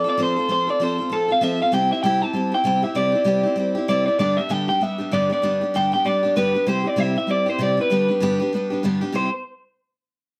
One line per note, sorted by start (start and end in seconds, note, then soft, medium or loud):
0.04 0.17 C4 soft
0.04 0.18 F4 soft
0.04 0.18 A4 medium
0.09 0.20 D5 medium
0.18 0.37 F3 medium
0.18 0.37 C4 medium
0.18 0.37 F4 medium
0.18 0.35 A4 medium
0.23 0.51 C5 loud
0.36 0.48 C4 soft
0.36 0.49 F4 medium
0.36 0.49 A4 medium
0.48 0.68 F3 medium
0.48 0.68 C4 medium
0.48 0.68 F4 medium
0.48 0.66 A4 medium
0.48 0.68 C5 loud
0.67 0.80 C4 soft
0.67 0.80 F4 soft
0.67 0.80 A4 medium
0.67 0.83 D5 loud
0.80 0.99 F3 medium
0.80 0.99 C4 medium
0.80 0.99 F4 medium
0.80 0.97 A4 medium
0.80 1.14 C5 loud
0.98 1.10 C4 soft
0.98 1.11 F4 soft
0.98 1.11 A4 medium
1.10 1.29 F3 medium
1.10 1.30 C4 medium
1.10 1.29 F4 medium
1.10 1.29 A4 loud
1.10 1.27 A4 medium
1.28 1.41 C4 soft
1.28 1.41 F4 medium
1.28 1.41 A4 medium
1.28 1.43 F5 loud
1.41 1.60 F3 medium
1.41 1.61 C4 medium
1.41 1.61 F4 medium
1.41 1.59 A4 loud
1.41 1.62 E5 loud
1.60 1.72 C4 soft
1.60 1.73 F4 medium
1.60 1.73 A4 medium
1.60 1.73 F5 loud
1.72 1.91 C3 medium
1.72 1.91 G3 medium
1.72 1.91 C4 medium
1.72 1.92 E4 medium
1.72 1.90 G4 medium
1.72 1.92 G5 loud
1.91 2.04 C4 soft
1.91 2.04 E4 medium
1.91 2.04 G4 medium
1.91 2.02 E5 loud
2.03 2.22 C3 medium
2.03 2.22 G3 medium
2.03 2.23 C4 medium
2.03 2.22 E4 loud
2.03 2.19 G4 loud
2.03 2.22 G5 loud
2.21 2.35 E4 medium
2.21 2.34 G4 medium
2.21 2.54 A5 loud
2.25 2.33 C4 soft
2.33 2.53 G3 medium
2.33 2.53 C4 medium
2.33 2.53 E4 medium
2.33 2.50 G4 medium
2.52 2.64 C4 soft
2.52 2.65 E4 medium
2.52 2.65 G4 medium
2.52 2.66 G5 loud
2.64 2.83 C3 medium
2.64 2.84 G3 medium
2.64 2.84 C4 medium
2.64 2.83 E4 medium
2.64 2.81 G4 medium
2.64 2.84 G5 loud
2.82 2.94 C4 soft
2.82 2.95 E4 medium
2.82 2.96 G4 medium
2.82 2.97 E5 loud
2.95 3.14 C3 medium
2.95 3.14 G3 medium
2.95 3.14 C4 medium
2.95 3.13 E4 medium
2.95 3.11 G4 medium
2.95 3.88 D5 loud
3.12 3.25 C4 soft
3.12 3.26 E4 medium
3.12 3.26 G4 medium
3.24 3.44 C3 medium
3.24 3.45 G3 medium
3.24 3.45 C4 medium
3.24 3.44 E4 medium
3.24 3.42 G4 medium
3.43 3.56 C4 medium
3.43 3.57 E4 medium
3.43 3.57 G4 medium
3.56 3.75 G3 medium
3.56 3.76 C4 medium
3.56 3.76 E4 medium
3.56 3.74 G4 medium
3.75 3.88 C4 soft
3.75 3.89 E4 medium
3.75 3.88 G4 medium
3.88 4.07 C3 medium
3.88 4.07 G3 medium
3.88 4.08 C4 medium
3.88 4.07 E4 medium
3.88 4.04 G4 loud
3.88 4.05 D5 loud
4.06 4.20 C4 soft
4.06 4.20 E4 medium
4.06 4.19 G4 medium
4.06 4.18 D5 medium
4.19 4.38 G2 medium
4.19 4.38 D3 medium
4.19 4.38 G3 medium
4.19 4.38 B3 medium
4.19 4.37 D4 medium
4.19 4.35 G4 medium
4.19 4.39 D5 loud
4.36 4.49 B3 soft
4.36 4.50 D4 soft
4.36 4.50 G4 soft
4.36 4.51 E5 loud
4.41 4.49 G3 soft
4.49 4.68 G2 medium
4.49 4.69 D3 medium
4.49 4.69 G3 medium
4.49 4.69 B3 medium
4.49 4.68 D4 medium
4.49 4.67 G4 medium
4.49 4.68 G5 loud
4.68 4.80 B3 medium
4.68 4.82 D4 medium
4.68 4.81 G4 medium
4.68 4.83 G5 loud
4.81 5.00 G3 medium
4.81 4.99 B3 medium
4.81 4.98 D4 medium
4.81 4.97 G4 medium
4.81 5.14 E5 loud
4.98 5.12 G3 soft
4.98 5.12 B3 medium
4.98 5.12 D4 medium
4.98 5.12 G4 medium
5.11 5.31 G2 medium
5.11 5.31 D3 medium
5.11 5.31 G3 medium
5.11 5.31 B3 medium
5.11 5.30 D4 medium
5.11 5.28 G4 medium
5.11 5.31 D5 loud
5.29 5.42 G3 medium
5.29 5.42 B3 medium
5.29 5.43 D4 medium
5.29 5.43 G4 medium
5.29 5.76 D5 medium
5.42 5.61 G2 medium
5.42 5.62 D3 medium
5.42 5.62 G3 medium
5.42 5.62 B3 medium
5.42 5.61 D4 medium
5.42 5.60 G4 medium
5.61 5.74 G3 soft
5.61 5.74 B3 soft
5.61 5.75 D4 soft
5.61 5.74 G4 medium
5.74 5.93 G2 medium
5.74 5.93 D3 medium
5.74 5.93 G3 medium
5.74 5.93 B3 medium
5.74 5.92 D4 loud
5.74 5.91 G4 medium
5.74 5.92 G5 loud
5.92 6.03 G3 soft
5.92 6.04 B3 soft
5.92 6.05 D4 medium
5.92 6.05 G4 medium
5.92 6.06 G5 loud
6.05 6.23 G3 medium
6.05 6.24 B3 medium
6.05 6.23 D4 medium
6.05 6.22 G4 medium
6.05 6.36 D5 loud
6.23 6.36 G3 soft
6.23 6.36 B3 soft
6.23 6.37 D4 medium
6.23 6.36 G4 medium
6.36 6.55 G2 medium
6.36 6.55 D3 medium
6.36 6.55 G3 medium
6.36 6.55 B3 medium
6.36 6.54 D4 medium
6.36 6.53 G4 loud
6.36 6.65 B4 loud
6.54 6.65 G3 medium
6.54 6.67 B3 medium
6.54 6.67 D4 medium
6.54 6.67 G4 medium
6.66 6.85 C3 medium
6.66 6.85 G3 medium
6.66 6.86 C4 medium
6.66 6.84 E4 medium
6.66 6.83 G4 medium
6.66 6.87 C5 loud
6.84 6.96 C4 soft
6.84 6.97 E4 soft
6.84 6.97 G4 medium
6.84 7.00 D5 loud
6.96 7.16 C3 medium
6.96 7.16 G3 medium
6.96 7.16 C4 medium
6.96 7.16 E4 loud
6.96 7.14 G4 medium
6.96 7.17 E5 loud
7.16 7.28 E4 soft
7.16 7.28 G4 medium
7.16 7.30 E5 medium
7.27 7.46 G3 medium
7.27 7.47 C4 medium
7.27 7.47 E4 medium
7.27 7.45 G4 medium
7.27 7.49 D5 loud
7.46 7.60 E4 medium
7.46 7.59 G4 medium
7.46 7.61 C5 loud
7.50 7.59 C4 medium
7.59 7.78 C3 medium
7.59 7.78 G3 medium
7.59 7.79 C4 medium
7.59 7.78 E4 medium
7.59 7.76 G4 medium
7.63 7.79 D5 loud
7.77 7.92 C4 medium
7.77 7.91 E4 medium
7.77 7.90 G4 medium
7.77 8.81 B4 medium
7.90 8.09 G2 medium
7.90 8.09 D3 medium
7.90 8.10 G3 medium
7.90 8.10 B3 medium
7.90 8.08 D4 medium
7.90 8.07 G4 loud
8.08 8.21 G3 soft
8.08 8.21 B3 soft
8.08 8.21 D4 soft
8.08 8.21 G4 medium
8.20 8.39 G2 medium
8.20 8.40 D3 medium
8.20 8.40 G3 loud
8.20 8.40 B3 loud
8.20 8.40 D4 loud
8.20 8.38 G4 loud
8.40 8.51 G3 medium
8.40 8.53 B3 medium
8.40 8.53 D4 medium
8.40 8.52 G4 medium
8.53 8.71 G3 medium
8.53 8.72 B3 medium
8.53 8.70 D4 medium
8.53 8.69 G4 medium
8.70 8.83 G3 soft
8.70 8.84 B3 medium
8.70 8.84 D4 medium
8.70 8.83 G4 medium
8.83 9.02 G2 loud
8.83 9.02 D3 medium
8.83 9.02 G3 medium
8.83 9.03 B3 medium
8.83 9.01 D4 loud
8.83 9.00 G4 medium
9.01 9.12 G3 medium
9.01 9.13 B3 medium
9.01 9.14 D4 medium
9.01 9.14 G4 medium
9.12 9.28 C3 medium
9.12 9.28 G3 medium
9.12 9.29 C4 medium
9.12 9.29 E4 medium
9.12 9.29 G4 medium
9.12 9.32 C5 medium